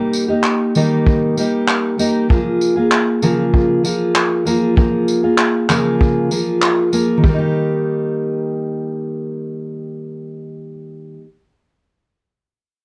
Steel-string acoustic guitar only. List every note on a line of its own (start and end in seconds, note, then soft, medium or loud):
0.00 0.29 G3 medium
0.00 0.29 A#3 medium
0.00 0.28 D#4 medium
0.00 0.27 G4 medium
0.28 0.75 A#3 medium
0.28 0.75 D#4 medium
0.28 0.75 G4 medium
0.75 1.37 D#3 medium
0.75 1.36 G3 medium
0.75 1.37 A#3 medium
0.75 1.37 D#4 loud
0.75 1.38 G4 medium
1.37 1.97 G3 medium
1.37 1.99 A#3 medium
1.37 1.98 D#4 medium
1.37 1.99 G4 medium
1.98 2.28 G3 medium
1.98 2.29 A#3 medium
1.98 2.30 D#4 medium
1.98 2.30 G4 medium
2.29 2.76 F3 medium
2.29 2.76 A#3 medium
2.29 2.76 F4 medium
2.29 2.75 G#4 medium
2.76 3.22 A#3 soft
2.76 3.22 F4 medium
2.76 3.22 G#4 medium
3.22 3.84 C#3 medium
3.22 3.82 F3 loud
3.22 3.84 A#3 medium
3.22 3.84 F4 loud
3.22 3.85 G#4 loud
3.84 4.44 F3 medium
3.84 4.46 A#3 medium
3.84 4.46 F4 medium
3.84 4.46 G#4 medium
4.45 4.75 F3 medium
4.45 4.76 A#3 medium
4.45 4.76 F4 medium
4.45 4.77 G#4 medium
4.76 5.23 F3 medium
4.76 5.23 A#3 medium
4.76 5.23 F4 medium
4.76 5.21 G#4 medium
5.23 5.68 A#3 soft
5.23 5.69 F4 medium
5.23 5.69 G#4 medium
5.69 6.31 C#3 medium
5.69 6.30 F3 medium
5.69 6.31 A#3 medium
5.69 6.31 F4 medium
5.69 6.32 G#4 medium
6.31 6.91 F3 medium
6.31 6.93 A#3 medium
6.31 6.93 F4 medium
6.31 6.93 G#4 medium
6.92 7.23 F3 medium
6.92 7.24 A#3 medium
6.92 7.24 F4 medium
6.92 7.25 G#4 medium
7.17 11.16 D#3 medium
7.24 11.21 G3 medium
7.29 11.24 A#3 medium
7.34 11.26 D#4 medium
7.38 11.28 G4 medium